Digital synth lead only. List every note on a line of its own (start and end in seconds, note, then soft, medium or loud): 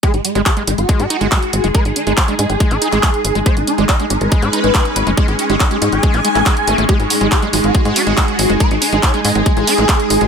0.03 0.08 G#4 medium
0.14 0.19 G#3 medium
0.25 0.30 G#3 medium
0.35 0.40 G#3 medium
0.46 0.51 G#4 medium
0.57 0.62 G#3 medium
0.67 0.72 G#3 medium
0.78 1.66 F#4 loud
1.75 1.80 B4 medium
1.85 1.90 D#4 medium
1.96 2.01 D#4 medium
2.07 2.12 D#4 medium
2.17 2.22 C#5 loud
2.28 2.33 D#4 medium
2.39 2.44 D#4 medium
2.50 3.37 G#4 loud
3.46 3.51 C#5 medium
3.57 3.62 D#4 medium
3.67 3.72 D#4 medium
3.78 3.83 D#4 medium
3.89 3.94 D#5 loud
4.00 4.05 D#4 medium
4.10 4.15 D#4 medium
4.21 5.09 B4 loud
5.17 5.22 D#5 medium
5.28 5.33 G#4 medium
5.39 5.44 G#4 medium
5.50 5.55 G#4 medium
5.60 5.65 D#5 medium
5.71 5.76 G#4 medium
5.82 5.87 G#4 medium
5.92 6.80 G#5 loud
6.89 6.94 G#4 medium
7.00 7.05 G#3 medium
7.10 7.15 G#3 medium
7.21 7.26 G#3 medium
7.32 7.37 G#4 medium
7.43 7.47 G#3 medium
7.53 7.58 G#3 medium
7.64 8.52 F#4 loud
8.60 8.65 B4 loud
8.71 8.76 D#4 medium
8.82 8.87 D#4 medium
8.92 8.97 D#4 medium
9.03 9.08 C#5 loud
9.14 9.19 D#4 medium
9.25 9.30 D#4 medium
9.35 10.23 G#4 loud